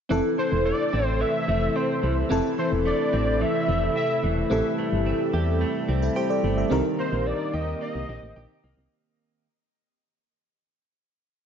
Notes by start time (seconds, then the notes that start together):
0.09 F1 C3 E3 A3 C4 E4 A4
0.38 E3 C5
0.52 E1
0.66 A3 D5
0.93 A1 C4
1.06 C5
1.21 E3 E5
1.48 F1 A3
1.76 C4 C5
2.03 C2 E3
2.29 F1 E3 C4 E4 A4
2.58 E3 C5
2.72 E1
2.86 A3 D5
3.13 A1 C4
3.41 E3 E5
3.68 F1 A3
3.96 C4 E5
4.23 E1 E3
4.50 A1 E3 G3 C4 E4 G4 A4
4.78 A3
4.92 G1
5.06 C4
5.33 E2 G4
5.61 A3
5.89 C2 C4
6.02 E4 A4
6.16 G4 C5
6.30 A4 D5
6.44 G1 A3
6.57 A4 E5
6.70 C2 D#3 A#3 C4 D#4 G4 A#4
6.99 A#3 C5
7.12 A#1
7.26 C4 D5
7.54 D#2 G4 D#5
7.81 A#3 D#5
7.95 C2
8.09 A#1 C4
8.22 A1
8.36 A#1 G4
8.64 C2 A#3
8.77 C2